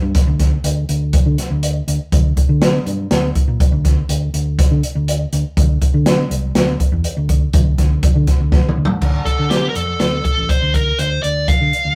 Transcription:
0.02 0.12 G2 medium
0.15 kick loud
0.15 snare soft
0.15 closed hi-hat medium
0.27 0.56 D2 medium
0.40 kick medium
0.40 snare soft
0.40 closed hi-hat medium
0.64 0.83 D2 medium
0.64 closed hi-hat medium
0.89 1.18 D2 medium
0.89 closed hi-hat medium
1.13 kick loud
1.13 closed hi-hat medium
1.26 1.36 D3 medium
1.38 snare soft
1.38 closed hi-hat medium
1.51 1.80 D2 medium
1.63 closed hi-hat medium
1.88 1.97 D2 medium
1.88 closed hi-hat medium
2.12 2.32 D2 medium
2.12 kick loud
2.12 closed hi-hat medium
2.37 kick medium
2.37 closed hi-hat medium
2.49 2.78 D3 medium
2.62 snare loud
2.62 closed hi-hat medium
2.86 3.05 G2 medium
2.86 closed hi-hat medium
3.11 3.30 D2 medium
3.11 snare medium
3.11 closed hi-hat medium
3.35 kick medium
3.35 closed hi-hat medium
3.48 3.57 A#2 medium
3.60 kick loud
3.60 closed hi-hat medium
3.72 4.01 D2 medium
3.85 kick medium
3.85 snare soft
3.85 closed hi-hat medium
4.09 4.28 D2 medium
4.09 closed hi-hat medium
4.34 4.63 D2 medium
4.34 closed hi-hat medium
4.59 kick loud
4.59 snare soft
4.59 closed hi-hat medium
4.71 4.80 D3 medium
4.83 closed hi-hat medium
4.95 5.24 D2 medium
5.08 closed hi-hat medium
5.33 5.42 D2 medium
5.33 closed hi-hat medium
5.57 5.76 D2 medium
5.57 kick loud
5.57 closed hi-hat medium
5.82 kick medium
5.82 closed hi-hat medium
5.94 6.23 D3 medium
6.06 snare loud
6.06 closed hi-hat medium
6.30 6.50 C2 medium
6.30 closed hi-hat medium
6.55 6.74 D2 medium
6.55 snare loud
6.55 closed hi-hat medium
6.80 kick medium
6.80 closed hi-hat medium
6.92 7.02 E2 loud
7.04 closed hi-hat medium
7.17 7.46 D2 medium
7.29 kick medium
7.29 closed hi-hat medium
7.53 7.73 D2 medium
7.53 kick loud
7.53 closed hi-hat medium
7.78 8.07 D2 medium
7.78 kick medium
7.78 snare soft
7.78 closed hi-hat medium
8.03 kick loud
8.03 closed hi-hat medium
8.16 8.25 D3 medium
8.27 kick medium
8.27 snare soft
8.27 closed hi-hat medium
8.40 8.69 D2 medium
8.52 kick loud
8.52 snare medium
8.69 mid tom medium
8.77 8.87 D2 medium
8.85 floor tom loud
9.01 9.21 D2 medium
9.01 kick medium
9.01 crash medium
9.25 9.50 A4 medium
9.25 kick medium
9.25 closed hi-hat soft
9.39 9.68 D3 medium
9.50 9.69 G4 medium
9.50 snare loud
9.50 closed hi-hat medium
9.69 9.75 A#4 medium
9.75 9.95 F2 medium
9.75 9.99 A4 medium
9.75 closed hi-hat medium
10.00 10.20 D2 medium
10.00 10.24 A4 medium
10.00 snare medium
10.00 closed hi-hat medium
10.25 10.50 A4 medium
10.25 kick medium
10.25 closed hi-hat soft
10.38 10.47 A1 medium
10.49 10.75 C5 medium
10.49 kick medium
10.49 closed hi-hat medium
10.62 10.91 D2 medium
10.74 11.00 A#4 medium
10.74 kick medium
10.74 closed hi-hat soft
10.99 11.18 D2 medium
10.99 11.22 C5 medium
10.99 closed hi-hat medium
11.23 11.53 D2 medium
11.23 11.49 D5 medium
11.23 closed hi-hat soft
11.48 11.95 F5 medium
11.48 kick loud
11.48 closed hi-hat medium
11.61 11.70 D3 medium
11.73 closed hi-hat medium
11.85 11.95 D2 medium

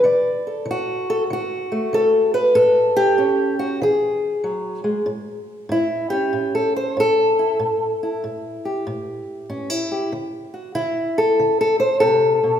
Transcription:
0.04 0.62 D3 medium
0.04 0.67 D5 medium
0.47 1.09 A4 soft
0.65 1.24 D3 medium
0.71 1.31 F#4 medium
1.10 1.22 A4 medium
1.30 1.88 D3 medium
1.30 2.55 F#4 medium
1.72 3.18 A3 medium
1.93 2.51 D3 medium
1.93 2.34 A4 loud
2.34 2.55 B4 loud
2.55 3.14 A2 medium
2.55 3.59 A4 loud
2.97 3.81 G4 loud
3.17 3.76 A2 medium
3.17 3.78 C#4 soft
3.59 3.81 F#4 medium
3.82 4.40 E3 medium
3.82 5.08 G#4 medium
4.44 4.84 F#3 medium
4.84 5.06 G#3 medium
5.06 5.65 A2 medium
5.69 6.28 A2 medium
5.69 6.10 E4 medium
6.10 7.57 C#4 soft
6.10 6.53 G4 medium
6.33 6.91 A2 medium
6.55 6.75 A4 medium
6.76 6.97 C5 medium
6.97 7.55 A2 medium
6.97 8.24 A4 loud
7.39 7.57 E4 soft
7.59 8.18 A2 medium
8.03 9.49 E4 soft
8.24 8.82 A2 medium
8.65 9.90 G4 soft
8.87 9.45 A2 medium
9.49 10.08 A2 medium
9.49 9.70 C#4 soft
9.70 10.12 E4 soft
9.92 10.10 G4 soft
10.12 10.71 D3 medium
10.54 10.75 F#4 soft
10.75 11.34 D3 medium
10.75 11.17 E4 loud
11.18 11.60 A4 loud
11.40 11.98 D3 medium
11.61 11.79 A4 loud
11.80 12.00 C5 medium
12.00 12.43 C3 medium
12.00 12.60 A4 loud
12.43 12.60 B2 medium

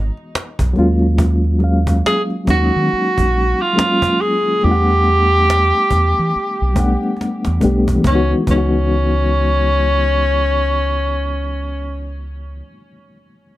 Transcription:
0.17 cajon slap soft
0.35 cajon slap medium
0.59 0.73 B1 medium
0.59 cajon bass medium
0.73 1.52 F#3 medium
0.73 1.52 G#3 medium
0.73 1.53 A#3 medium
0.73 1.54 C#4 medium
0.73 cajon slap soft
0.78 2.01 D#2 medium
0.78 1.54 F4 loud
0.78 cajon slap soft
0.99 cajon slap soft
1.18 cajon bass medium
1.44 cajon slap soft
1.59 2.44 F#3 medium
1.59 2.45 G#3 medium
1.59 2.46 A#3 soft
1.59 2.47 C#4 soft
1.59 cajon slap soft
1.64 2.85 F5 medium
1.87 cajon bass medium
2.06 2.23 G#4 medium
2.06 cajon slap medium
2.30 cajon slap soft
2.45 2.69 D#2 medium
2.45 2.79 F#3 soft
2.45 2.80 G#3 soft
2.45 2.80 A#3 soft
2.45 2.81 C#4 soft
2.45 cajon bass medium
2.50 2.82 D#4 medium
2.50 3.63 F#4 medium
2.72 cajon slap soft
2.76 2.88 D#3 medium
2.88 cajon slap soft
2.93 muted fingered electric bass stroke soft
3.18 3.52 A#1 medium
3.18 cajon bass medium
3.33 cajon slap soft
3.61 4.22 F4 medium
3.61 cajon slap soft
3.73 4.39 F#3 medium
3.73 4.39 G#3 medium
3.73 4.40 A#3 medium
3.77 4.41 C#4 medium
3.77 4.41 F4 medium
3.77 cajon slap medium
4.02 cajon bass medium
4.19 4.66 G#4 medium
4.19 cajon slap soft
4.22 cajon slap soft
4.43 cajon slap soft
4.60 5.83 G3 medium
4.60 5.83 A3 medium
4.60 5.84 B3 medium
4.60 5.84 D4 medium
4.60 cajon slap soft
4.64 5.71 E2 medium
4.64 4.71 F4 medium
4.64 7.20 G4 loud
4.71 5.88 F#5 medium
4.88 cajon slap soft
4.91 cajon slap soft
5.04 cajon slap soft
5.31 cajon slap soft
5.50 cajon slap medium
5.73 cajon slap soft
5.91 6.12 E2 medium
5.91 cajon bass medium
6.15 6.31 E3 medium
6.15 cajon slap soft
6.31 cajon slap soft
6.36 muted fingered electric bass stroke soft
6.59 6.95 B1 medium
6.59 cajon slap soft
6.74 7.39 G3 medium
6.74 7.40 A3 medium
6.74 7.40 B3 medium
6.74 7.41 D4 medium
6.74 cajon bass medium
6.79 7.41 F#5 medium
7.03 cajon slap soft
7.17 cajon slap soft
7.21 cajon slap soft
7.45 7.59 E2 medium
7.45 cajon slap medium
7.60 7.97 B1 medium
7.60 7.94 G3 medium
7.60 7.94 A3 medium
7.60 7.95 B3 medium
7.60 7.95 D4 medium
7.60 cajon bass medium
7.65 7.96 G4 medium
7.88 cajon bass medium
7.96 8.27 E3 medium
8.01 8.30 G#3 medium
8.01 cajon bass medium
8.06 8.33 C#2 medium
8.06 8.33 B3 medium
8.06 8.33 C#4 medium
8.06 cajon slap medium
8.10 8.35 D#4 medium
8.15 8.38 F#4 medium
8.38 12.50 E3 medium
8.42 12.55 G#3 medium
8.47 12.60 C#2 medium
8.47 12.60 B3 medium
8.47 12.25 C#4 medium
8.47 cajon bass medium
8.53 12.65 D#4 medium
8.58 12.70 F#4 medium

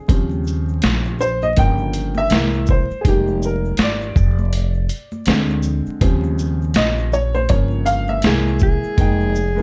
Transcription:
0.08 0.79 D#2 loud
0.08 1.16 C#3 medium
0.08 1.16 F3 medium
0.08 1.16 G3 soft
0.08 1.16 C4 medium
0.08 kick loud
0.08 closed hi-hat medium
0.08 shaker medium
0.31 high conga medium
0.31 shaker soft
0.44 shaker soft
0.47 shaker medium
0.69 shaker soft
0.82 1.53 A#1 medium
0.82 snare loud
0.82 closed hi-hat medium
0.82 shaker medium
1.05 shaker soft
1.19 1.43 C5 medium
1.19 low conga medium
1.19 shaker soft
1.21 shaker soft
1.42 1.58 D#5 loud
1.42 high conga medium
1.42 shaker soft
1.56 2.27 G1 loud
1.56 2.27 C#3 medium
1.56 2.28 F3 soft
1.56 2.28 A#3 medium
1.56 2.19 G5 loud
1.56 kick medium
1.56 closed hi-hat medium
1.56 shaker medium
1.78 shaker soft
1.93 closed hi-hat medium
1.93 shaker soft
1.93 shaker medium
2.15 2.70 E5 loud
2.15 high conga medium
2.15 shaker soft
2.30 2.87 C2 loud
2.30 2.84 E3 medium
2.30 2.84 G#3 soft
2.30 2.84 A#3 medium
2.30 snare loud
2.30 closed hi-hat medium
2.30 low conga medium
2.30 shaker medium
2.54 shaker soft
2.66 low conga medium
2.66 shaker soft
2.68 3.02 C5 medium
2.68 kick medium
2.68 shaker soft
2.90 muted upright bass stroke soft
2.90 shaker soft
3.01 3.75 F1 medium
3.01 3.06 G#4 medium
3.01 kick loud
3.01 closed hi-hat medium
3.06 4.13 D#3 medium
3.06 4.13 G3 soft
3.06 4.13 G#3 soft
3.06 4.13 A#3 medium
3.06 3.45 G4 medium
3.06 shaker medium
3.28 high conga medium
3.28 shaker soft
3.42 3.82 A#4 medium
3.42 shaker soft
3.42 shaker medium
3.65 shaker soft
3.77 4.14 G#1 medium
3.77 snare loud
3.77 closed hi-hat medium
3.77 shaker medium
3.82 5.62 D5 medium
4.01 shaker soft
4.15 4.86 F1 loud
4.15 kick loud
4.15 low conga medium
4.15 shaker soft
4.15 shaker medium
4.39 high conga medium
4.39 shaker soft
4.53 closed hi-hat medium
4.53 shaker medium
4.74 shaker soft
4.89 closed hi-hat soft
4.89 shaker medium
5.12 high conga medium
5.12 shaker medium
5.26 5.83 D2 loud
5.26 5.98 D3 medium
5.26 5.98 G#3 medium
5.26 5.98 C4 medium
5.26 snare loud
5.26 closed hi-hat medium
5.26 low conga medium
5.26 shaker medium
5.50 shaker soft
5.63 low conga medium
5.63 shaker soft
5.86 muted upright bass stroke soft
5.86 shaker soft
6.01 6.72 D#2 loud
6.01 7.45 C#3 medium
6.01 7.46 F3 medium
6.01 7.46 G3 medium
6.01 7.46 C4 medium
6.01 kick loud
6.01 closed hi-hat medium
6.01 shaker soft
6.24 high conga medium
6.24 shaker soft
6.38 shaker soft
6.38 shaker medium
6.62 shaker medium
6.74 7.45 A#1 medium
6.74 7.14 D#5 medium
6.74 snare loud
6.74 closed hi-hat medium
6.74 shaker medium
6.98 shaker medium
7.12 7.36 C#5 medium
7.12 high conga soft
7.12 low conga medium
7.12 shaker soft
7.12 shaker medium
7.34 7.50 C5 medium
7.34 high conga medium
7.34 shaker soft
7.49 8.20 G1 loud
7.49 8.20 C#3 medium
7.49 8.20 F3 soft
7.49 8.21 A#3 medium
7.49 7.88 C#5 medium
7.49 kick medium
7.49 closed hi-hat medium
7.49 high conga soft
7.49 shaker medium
7.71 shaker soft
7.86 8.09 F5 loud
7.86 closed hi-hat medium
7.86 shaker medium
8.08 8.94 E5 medium
8.08 high conga medium
8.08 shaker medium
8.22 8.80 C2 loud
8.22 8.95 E3 medium
8.22 8.95 G#3 medium
8.22 snare loud
8.22 closed hi-hat medium
8.22 low conga medium
8.22 shaker medium
8.26 8.95 A#3 medium
8.26 8.60 G#4 medium
8.48 shaker soft
8.59 low conga medium
8.59 shaker soft
8.61 9.62 G#4 loud
8.61 kick medium
8.61 shaker soft
8.83 muted upright bass stroke soft
8.83 shaker soft
8.97 9.62 F1 medium
8.97 9.33 G#3 medium
8.97 9.34 A#3 medium
8.97 9.35 D#4 medium
8.97 9.35 G5 medium
8.97 kick loud
8.97 closed hi-hat medium
8.97 shaker soft
9.21 high conga medium
9.21 shaker soft
9.34 shaker soft
9.34 shaker medium
9.55 9.62 G#3 medium
9.55 9.62 A#3 medium
9.55 9.62 D#4 medium
9.55 9.62 F4 medium
9.55 shaker soft

